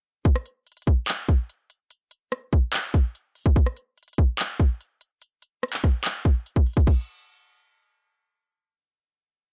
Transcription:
0.25 kick loud
0.25 closed hi-hat medium
0.36 cross-stick loud
0.46 closed hi-hat medium
0.67 closed hi-hat soft
0.72 closed hi-hat soft
0.77 closed hi-hat medium
0.82 closed hi-hat medium
0.87 kick loud
0.87 closed hi-hat medium
1.08 clap loud
1.08 closed hi-hat medium
1.28 kick loud
1.28 closed hi-hat medium
1.50 closed hi-hat medium
1.70 closed hi-hat medium
1.91 closed hi-hat medium
2.11 closed hi-hat medium
2.32 cross-stick loud
2.32 closed hi-hat medium
2.53 kick loud
2.53 closed hi-hat medium
2.73 clap loud
2.73 closed hi-hat loud
2.94 kick loud
2.94 closed hi-hat medium
3.15 closed hi-hat medium
3.35 open hi-hat medium
3.46 kick loud
3.56 kick loud
3.56 closed hi-hat medium
3.66 cross-stick medium
3.77 closed hi-hat medium
3.98 closed hi-hat soft
4.03 closed hi-hat soft
4.08 closed hi-hat medium
4.13 closed hi-hat medium
4.18 kick loud
4.18 closed hi-hat medium
4.39 clap loud
4.39 closed hi-hat loud
4.60 kick loud
4.60 closed hi-hat medium
4.81 closed hi-hat medium
5.01 closed hi-hat medium
5.22 closed hi-hat medium
5.42 closed hi-hat medium
5.63 cross-stick loud
5.63 closed hi-hat medium
5.68 closed hi-hat medium
5.73 clap medium
5.73 closed hi-hat soft
5.79 closed hi-hat soft
5.84 kick loud
5.84 cross-stick medium
5.84 closed hi-hat medium
6.04 clap loud
6.04 closed hi-hat loud
6.25 kick loud
6.25 closed hi-hat medium
6.46 closed hi-hat medium
6.56 kick medium
6.67 closed hi-hat soft
6.67 open hi-hat medium
6.73 kick loud
6.73 closed hi-hat medium
6.80 closed hi-hat medium
6.87 kick loud
6.87 closed hi-hat medium
6.87 crash medium
6.94 closed hi-hat medium
7.01 closed hi-hat medium

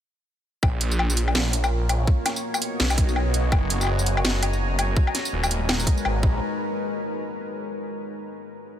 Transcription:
0.63 1.34 A#1 loud
0.63 2.06 A#3 medium
0.63 2.06 F4 medium
0.63 2.06 A#4 medium
0.63 4.93 C#5 medium
0.63 kick loud
0.63 low woodblock medium
0.81 closed hi-hat medium
0.91 tambourine medium
0.99 low woodblock medium
1.10 tambourine medium
1.17 closed hi-hat medium
1.28 low woodblock medium
1.35 2.06 A#1 loud
1.35 snare loud
1.35 closed hi-hat soft
1.53 closed hi-hat medium
1.64 tambourine soft
1.64 low woodblock medium
1.89 closed hi-hat medium
1.89 low woodblock medium
2.07 3.51 B3 medium
2.07 4.94 F#4 medium
2.07 3.51 D#5 medium
2.07 kick loud
2.26 snare soft
2.26 closed hi-hat medium
2.26 low woodblock medium
2.36 tambourine medium
2.54 tambourine medium
2.54 low woodblock medium
2.62 closed hi-hat medium
2.80 3.51 B1 loud
2.80 snare loud
2.80 closed hi-hat soft
2.90 tambourine medium
2.90 low woodblock medium
2.98 kick loud
2.98 closed hi-hat medium
3.09 tambourine soft
3.16 low woodblock medium
3.34 closed hi-hat medium
3.52 4.23 F#1 loud
3.52 4.96 G#5 medium
3.52 4.96 A#5 medium
3.52 kick loud
3.52 low woodblock medium
3.70 closed hi-hat medium
3.81 tambourine medium
3.81 low woodblock soft
3.83 low woodblock soft
3.85 low woodblock soft
3.87 low woodblock soft
3.99 tambourine medium
4.06 closed hi-hat medium
4.17 low woodblock medium
4.24 4.96 F#1 loud
4.24 snare loud
4.24 closed hi-hat soft
4.43 closed hi-hat medium
4.43 low woodblock medium
4.53 tambourine soft
4.79 closed hi-hat medium
4.79 low woodblock medium
4.96 6.22 G#3 medium
4.96 6.22 D#4 medium
4.96 6.22 A#4 medium
4.96 6.22 B4 medium
4.96 kick loud
5.07 low woodblock soft
5.15 snare soft
5.15 closed hi-hat medium
5.25 tambourine medium
5.33 5.86 D#1 loud
5.43 tambourine medium
5.43 low woodblock medium
5.51 closed hi-hat medium
5.69 snare loud
5.69 closed hi-hat soft
5.69 low woodblock medium
5.80 tambourine medium
5.87 kick loud
5.87 closed hi-hat medium
5.98 tambourine soft
6.05 6.23 G#1 loud
6.05 low woodblock medium
6.23 6.40 A#1 medium
6.23 kick loud

